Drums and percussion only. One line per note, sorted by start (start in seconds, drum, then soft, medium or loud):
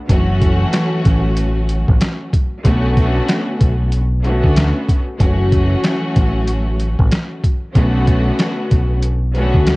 0.09 kick loud
0.09 closed hi-hat loud
0.42 kick medium
0.42 closed hi-hat medium
0.73 snare loud
0.73 snare medium
0.73 closed hi-hat loud
1.05 kick loud
1.05 closed hi-hat medium
1.37 closed hi-hat medium
1.69 closed hi-hat medium
1.88 kick loud
2.01 snare loud
2.01 snare medium
2.01 closed hi-hat loud
2.33 kick medium
2.33 closed hi-hat medium
2.65 kick loud
2.65 closed hi-hat loud
2.97 kick medium
2.97 closed hi-hat medium
3.28 snare loud
3.28 snare medium
3.28 closed hi-hat loud
3.61 kick loud
3.61 closed hi-hat medium
3.92 closed hi-hat medium
4.24 closed hi-hat medium
4.44 kick loud
4.56 snare loud
4.56 snare medium
4.56 closed hi-hat loud
4.88 kick medium
4.88 closed hi-hat medium
5.20 kick loud
5.20 closed hi-hat loud
5.52 kick medium
5.52 closed hi-hat medium
5.84 snare loud
5.84 snare medium
5.84 closed hi-hat medium
6.16 kick loud
6.16 closed hi-hat medium
6.47 closed hi-hat medium
6.79 closed hi-hat medium
6.99 kick loud
7.11 snare loud
7.11 snare medium
7.11 closed hi-hat loud
7.44 kick medium
7.44 closed hi-hat medium
7.75 kick loud
7.75 closed hi-hat loud
8.07 kick medium
8.07 closed hi-hat medium
8.39 snare loud
8.39 snare medium
8.39 closed hi-hat medium
8.71 kick loud
8.71 closed hi-hat medium
9.02 closed hi-hat medium
9.35 closed hi-hat medium
9.54 kick loud
9.67 snare loud
9.67 snare medium
9.67 closed hi-hat loud